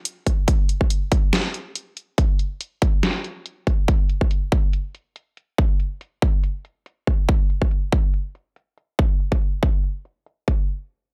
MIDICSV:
0, 0, Header, 1, 2, 480
1, 0, Start_track
1, 0, Tempo, 425532
1, 539, Time_signature, 4, 2, 24, 8
1, 12564, End_track
2, 0, Start_track
2, 0, Title_t, "Drums"
2, 59, Note_on_c, 9, 42, 78
2, 172, Note_off_c, 9, 42, 0
2, 299, Note_on_c, 9, 36, 59
2, 299, Note_on_c, 9, 42, 49
2, 412, Note_off_c, 9, 36, 0
2, 412, Note_off_c, 9, 42, 0
2, 539, Note_on_c, 9, 36, 118
2, 539, Note_on_c, 9, 42, 72
2, 652, Note_off_c, 9, 36, 0
2, 652, Note_off_c, 9, 42, 0
2, 780, Note_on_c, 9, 42, 45
2, 893, Note_off_c, 9, 42, 0
2, 911, Note_on_c, 9, 36, 60
2, 1020, Note_on_c, 9, 42, 75
2, 1024, Note_off_c, 9, 36, 0
2, 1132, Note_off_c, 9, 42, 0
2, 1259, Note_on_c, 9, 36, 103
2, 1260, Note_on_c, 9, 42, 49
2, 1372, Note_off_c, 9, 36, 0
2, 1372, Note_off_c, 9, 42, 0
2, 1499, Note_on_c, 9, 38, 114
2, 1499, Note_on_c, 9, 42, 70
2, 1612, Note_off_c, 9, 38, 0
2, 1612, Note_off_c, 9, 42, 0
2, 1740, Note_on_c, 9, 42, 49
2, 1852, Note_off_c, 9, 42, 0
2, 1980, Note_on_c, 9, 42, 73
2, 2092, Note_off_c, 9, 42, 0
2, 2220, Note_on_c, 9, 42, 45
2, 2332, Note_off_c, 9, 42, 0
2, 2459, Note_on_c, 9, 36, 115
2, 2460, Note_on_c, 9, 42, 71
2, 2572, Note_off_c, 9, 36, 0
2, 2572, Note_off_c, 9, 42, 0
2, 2699, Note_on_c, 9, 42, 47
2, 2812, Note_off_c, 9, 42, 0
2, 2939, Note_on_c, 9, 42, 73
2, 3052, Note_off_c, 9, 42, 0
2, 3179, Note_on_c, 9, 36, 103
2, 3179, Note_on_c, 9, 42, 50
2, 3292, Note_off_c, 9, 36, 0
2, 3292, Note_off_c, 9, 42, 0
2, 3419, Note_on_c, 9, 38, 113
2, 3419, Note_on_c, 9, 42, 70
2, 3532, Note_off_c, 9, 38, 0
2, 3532, Note_off_c, 9, 42, 0
2, 3659, Note_on_c, 9, 42, 47
2, 3772, Note_off_c, 9, 42, 0
2, 3899, Note_on_c, 9, 42, 72
2, 4012, Note_off_c, 9, 42, 0
2, 4139, Note_on_c, 9, 36, 60
2, 4139, Note_on_c, 9, 42, 45
2, 4252, Note_off_c, 9, 36, 0
2, 4252, Note_off_c, 9, 42, 0
2, 4379, Note_on_c, 9, 36, 112
2, 4379, Note_on_c, 9, 42, 70
2, 4492, Note_off_c, 9, 36, 0
2, 4492, Note_off_c, 9, 42, 0
2, 4619, Note_on_c, 9, 42, 45
2, 4732, Note_off_c, 9, 42, 0
2, 4751, Note_on_c, 9, 36, 57
2, 4859, Note_on_c, 9, 42, 72
2, 4864, Note_off_c, 9, 36, 0
2, 4972, Note_off_c, 9, 42, 0
2, 5099, Note_on_c, 9, 36, 96
2, 5099, Note_on_c, 9, 42, 48
2, 5212, Note_off_c, 9, 36, 0
2, 5212, Note_off_c, 9, 42, 0
2, 5339, Note_on_c, 9, 42, 69
2, 5452, Note_off_c, 9, 42, 0
2, 5579, Note_on_c, 9, 42, 48
2, 5692, Note_off_c, 9, 42, 0
2, 5819, Note_on_c, 9, 42, 72
2, 5932, Note_off_c, 9, 42, 0
2, 6059, Note_on_c, 9, 42, 47
2, 6172, Note_off_c, 9, 42, 0
2, 6299, Note_on_c, 9, 36, 108
2, 6299, Note_on_c, 9, 42, 72
2, 6412, Note_off_c, 9, 36, 0
2, 6412, Note_off_c, 9, 42, 0
2, 6539, Note_on_c, 9, 42, 47
2, 6652, Note_off_c, 9, 42, 0
2, 6779, Note_on_c, 9, 42, 77
2, 6892, Note_off_c, 9, 42, 0
2, 7019, Note_on_c, 9, 36, 93
2, 7019, Note_on_c, 9, 42, 49
2, 7132, Note_off_c, 9, 36, 0
2, 7132, Note_off_c, 9, 42, 0
2, 7259, Note_on_c, 9, 42, 71
2, 7372, Note_off_c, 9, 42, 0
2, 7499, Note_on_c, 9, 42, 50
2, 7612, Note_off_c, 9, 42, 0
2, 7739, Note_on_c, 9, 42, 74
2, 7851, Note_off_c, 9, 42, 0
2, 7979, Note_on_c, 9, 36, 55
2, 7979, Note_on_c, 9, 42, 46
2, 8092, Note_off_c, 9, 36, 0
2, 8092, Note_off_c, 9, 42, 0
2, 8219, Note_on_c, 9, 36, 106
2, 8332, Note_off_c, 9, 36, 0
2, 8459, Note_on_c, 9, 42, 47
2, 8572, Note_off_c, 9, 42, 0
2, 8591, Note_on_c, 9, 36, 53
2, 8699, Note_on_c, 9, 42, 78
2, 8704, Note_off_c, 9, 36, 0
2, 8811, Note_off_c, 9, 42, 0
2, 8939, Note_on_c, 9, 36, 92
2, 9052, Note_off_c, 9, 36, 0
2, 9179, Note_on_c, 9, 42, 75
2, 9291, Note_off_c, 9, 42, 0
2, 9419, Note_on_c, 9, 42, 51
2, 9532, Note_off_c, 9, 42, 0
2, 9659, Note_on_c, 9, 42, 76
2, 9771, Note_off_c, 9, 42, 0
2, 9899, Note_on_c, 9, 42, 48
2, 10012, Note_off_c, 9, 42, 0
2, 10139, Note_on_c, 9, 36, 102
2, 10252, Note_off_c, 9, 36, 0
2, 10379, Note_on_c, 9, 42, 49
2, 10492, Note_off_c, 9, 42, 0
2, 10511, Note_on_c, 9, 36, 55
2, 10619, Note_on_c, 9, 42, 77
2, 10624, Note_off_c, 9, 36, 0
2, 10732, Note_off_c, 9, 42, 0
2, 10859, Note_on_c, 9, 36, 90
2, 10972, Note_off_c, 9, 36, 0
2, 11099, Note_on_c, 9, 42, 71
2, 11211, Note_off_c, 9, 42, 0
2, 11339, Note_on_c, 9, 42, 51
2, 11451, Note_off_c, 9, 42, 0
2, 11578, Note_on_c, 9, 42, 77
2, 11691, Note_off_c, 9, 42, 0
2, 11819, Note_on_c, 9, 36, 54
2, 11932, Note_off_c, 9, 36, 0
2, 12564, End_track
0, 0, End_of_file